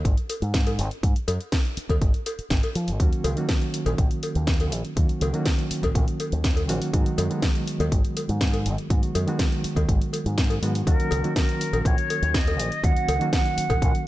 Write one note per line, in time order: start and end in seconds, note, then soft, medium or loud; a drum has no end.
0.05 0.14 G#1 medium
0.05 kick loud
0.05 closed hi-hat medium
0.17 closed hi-hat soft
0.30 open hi-hat loud
0.30 cowbell medium
0.42 0.80 G#2 medium
0.42 closed hi-hat soft
0.54 kick loud
0.54 snare loud
0.54 closed hi-hat medium
0.67 closed hi-hat soft
0.67 cowbell medium
0.79 0.88 G#1 medium
0.79 open hi-hat loud
0.91 closed hi-hat soft
1.03 1.13 G#2 loud
1.03 kick loud
1.03 closed hi-hat medium
1.16 closed hi-hat soft
1.28 1.37 F#2 medium
1.28 open hi-hat loud
1.28 cowbell medium
1.41 closed hi-hat soft
1.52 kick loud
1.52 snare loud
1.52 closed hi-hat medium
1.65 closed hi-hat soft
1.77 muted fingered electric bass stroke soft
1.77 open hi-hat loud
1.89 1.99 D#2 medium
1.89 kick medium
1.89 closed hi-hat soft
1.89 cowbell medium
2.02 2.11 G#1 medium
2.02 kick loud
2.02 closed hi-hat medium
2.14 closed hi-hat soft
2.26 open hi-hat loud
2.26 cowbell medium
2.39 muted fingered electric bass stroke soft
2.39 closed hi-hat soft
2.50 2.60 G#1 medium
2.50 kick loud
2.50 snare loud
2.50 closed hi-hat medium
2.63 closed hi-hat soft
2.63 cowbell medium
2.75 2.89 F3 medium
2.75 open hi-hat loud
2.88 2.97 G#1 medium
2.88 open hi-hat medium
3.00 3.09 D#2 medium
3.00 3.34 D#3 medium
3.00 3.34 F#3 medium
3.00 3.34 A#3 medium
3.00 3.34 C#4 medium
3.00 3.35 F#4 loud
3.00 kick loud
3.00 closed hi-hat medium
3.13 closed hi-hat soft
3.24 3.34 C#2 medium
3.24 open hi-hat loud
3.24 cowbell medium
3.36 4.94 D#3 medium
3.36 4.94 F#3 medium
3.36 4.94 A#3 medium
3.36 4.94 C#4 medium
3.36 4.95 F#4 medium
3.36 closed hi-hat soft
3.49 kick loud
3.49 snare loud
3.49 closed hi-hat medium
3.62 closed hi-hat soft
3.74 open hi-hat loud
3.86 3.95 A#1 medium
3.86 closed hi-hat soft
3.86 cowbell medium
3.98 4.08 A#1 medium
3.98 kick loud
3.98 closed hi-hat medium
4.11 closed hi-hat soft
4.23 open hi-hat loud
4.23 cowbell medium
4.35 4.72 D#2 loud
4.35 closed hi-hat soft
4.47 kick loud
4.47 snare loud
4.47 closed hi-hat medium
4.60 closed hi-hat soft
4.60 cowbell medium
4.72 4.82 A#1 medium
4.72 open hi-hat loud
4.85 closed hi-hat soft
4.96 5.06 D#2 medium
4.96 5.31 D#3 medium
4.96 5.31 F#3 medium
4.96 5.31 A#3 medium
4.96 5.31 C#4 medium
4.96 5.31 F#4 medium
4.96 kick loud
4.96 closed hi-hat medium
5.09 closed hi-hat soft
5.21 5.31 C#2 medium
5.21 open hi-hat medium
5.21 cowbell medium
5.33 6.66 D#3 loud
5.33 6.66 F#3 medium
5.33 6.66 A#3 medium
5.33 6.66 C#4 medium
5.33 6.67 F#4 loud
5.33 closed hi-hat soft
5.46 kick loud
5.46 snare loud
5.46 closed hi-hat medium
5.59 closed hi-hat soft
5.71 muted fingered electric bass stroke soft
5.71 open hi-hat loud
5.83 5.92 A#1 medium
5.83 kick medium
5.83 closed hi-hat soft
5.83 cowbell medium
5.95 6.05 A#1 medium
5.95 kick loud
5.95 closed hi-hat medium
6.08 closed hi-hat soft
6.20 open hi-hat medium
6.20 cowbell medium
6.32 6.69 D#2 loud
6.32 closed hi-hat soft
6.44 kick loud
6.44 snare loud
6.44 closed hi-hat medium
6.56 closed hi-hat soft
6.56 cowbell medium
6.69 6.78 A#1 medium
6.69 6.91 D#3 medium
6.69 6.91 F#3 medium
6.69 6.91 A#3 medium
6.69 6.91 C#4 medium
6.69 6.91 F#4 loud
6.69 open hi-hat loud
6.82 open hi-hat medium
6.93 7.03 G#2 loud
6.93 7.28 D#3 loud
6.93 7.28 F#3 medium
6.93 7.28 G#3 medium
6.93 7.28 B3 medium
6.93 7.28 F#4 loud
6.93 kick loud
6.93 closed hi-hat medium
7.06 closed hi-hat soft
7.18 7.28 F#2 medium
7.18 open hi-hat loud
7.18 cowbell medium
7.30 8.87 D#3 medium
7.30 8.87 F#3 medium
7.30 8.88 G#3 medium
7.30 8.88 B3 medium
7.30 8.88 F#4 medium
7.30 closed hi-hat soft
7.42 kick loud
7.42 snare loud
7.42 closed hi-hat medium
7.55 closed hi-hat soft
7.68 open hi-hat loud
7.80 7.89 D#2 medium
7.80 closed hi-hat soft
7.80 cowbell medium
7.92 8.01 G#1 medium
7.92 kick loud
7.92 closed hi-hat medium
8.05 closed hi-hat soft
8.17 open hi-hat loud
8.17 cowbell medium
8.29 8.67 G#2 loud
8.29 closed hi-hat soft
8.41 kick loud
8.41 snare loud
8.41 closed hi-hat medium
8.53 closed hi-hat soft
8.53 cowbell medium
8.66 8.75 G#1 medium
8.66 open hi-hat loud
8.78 closed hi-hat soft
8.90 9.00 G#2 loud
8.90 9.24 D#3 medium
8.90 9.25 F#3 medium
8.90 9.25 G#3 medium
8.90 9.25 B3 medium
8.90 9.25 F#4 medium
8.90 kick loud
8.90 closed hi-hat medium
9.03 closed hi-hat soft
9.15 9.24 F#2 medium
9.15 open hi-hat medium
9.15 cowbell medium
9.27 10.59 D#3 loud
9.27 10.60 F#3 medium
9.27 10.60 G#3 medium
9.27 10.60 B3 medium
9.27 10.60 F#4 loud
9.27 closed hi-hat soft
9.39 kick loud
9.39 snare loud
9.39 closed hi-hat medium
9.52 closed hi-hat soft
9.64 muted fingered electric bass stroke soft
9.64 open hi-hat loud
9.76 9.86 D#2 medium
9.76 kick medium
9.76 closed hi-hat soft
9.76 cowbell medium
9.89 9.98 G#1 medium
9.89 kick loud
9.89 closed hi-hat medium
10.02 closed hi-hat soft
10.13 open hi-hat medium
10.13 cowbell medium
10.26 10.58 G#2 loud
10.26 closed hi-hat soft
10.38 kick loud
10.38 snare loud
10.38 closed hi-hat medium
10.50 closed hi-hat soft
10.50 cowbell medium
10.62 10.81 G#2 medium
10.62 10.84 D#3 medium
10.62 10.84 F#3 medium
10.62 10.84 G#3 medium
10.62 10.84 B3 medium
10.62 10.85 F#4 loud
10.62 open hi-hat medium
10.75 open hi-hat medium
10.87 10.96 D#2 medium
10.87 11.21 D#3 medium
10.87 11.21 F#3 medium
10.87 11.21 A#3 medium
10.87 11.21 C#4 medium
10.87 11.22 F#4 loud
10.87 11.33 A#4 medium
10.87 kick loud
10.87 closed hi-hat medium
11.00 closed hi-hat soft
11.11 11.21 C#2 medium
11.11 open hi-hat loud
11.11 cowbell medium
11.23 12.81 D#3 medium
11.23 12.81 F#3 medium
11.23 12.81 A#3 medium
11.23 12.81 C#4 medium
11.23 12.82 F#4 medium
11.23 closed hi-hat soft
11.36 11.88 A#4 medium
11.36 kick loud
11.36 snare loud
11.36 closed hi-hat medium
11.49 closed hi-hat soft
11.61 open hi-hat loud
11.73 11.82 A#1 medium
11.73 closed hi-hat soft
11.73 cowbell medium
11.85 11.95 A#1 medium
11.85 12.37 C#5 loud
11.85 kick loud
11.85 closed hi-hat medium
11.98 closed hi-hat soft
12.10 open hi-hat loud
12.10 cowbell medium
12.22 12.59 D#2 loud
12.22 closed hi-hat soft
12.34 12.86 D#5 loud
12.34 kick loud
12.34 snare loud
12.34 closed hi-hat medium
12.47 closed hi-hat soft
12.47 cowbell medium
12.59 12.69 A#1 medium
12.59 open hi-hat loud
12.72 closed hi-hat soft
12.84 12.93 D#2 loud
12.84 13.18 D#3 medium
12.84 13.18 F#3 medium
12.84 13.18 A#3 medium
12.84 13.18 C#4 medium
12.84 13.18 F#4 medium
12.84 13.33 F#5 loud
12.84 kick loud
12.84 closed hi-hat medium
12.96 closed hi-hat soft
13.08 13.18 C#2 loud
13.08 open hi-hat loud
13.08 cowbell medium
13.20 14.08 D#3 medium
13.20 14.08 F#3 medium
13.20 14.08 A#3 medium
13.20 14.08 C#4 medium
13.20 14.08 F#4 loud
13.20 closed hi-hat soft
13.33 14.08 F#5 loud
13.33 kick loud
13.33 snare loud
13.33 closed hi-hat medium
13.46 closed hi-hat soft
13.58 muted fingered electric bass stroke soft
13.58 open hi-hat loud
13.70 13.79 A#1 medium
13.70 kick medium
13.70 closed hi-hat soft
13.70 cowbell medium
13.82 13.91 A#1 medium
13.82 kick loud
13.82 closed hi-hat medium
13.95 closed hi-hat soft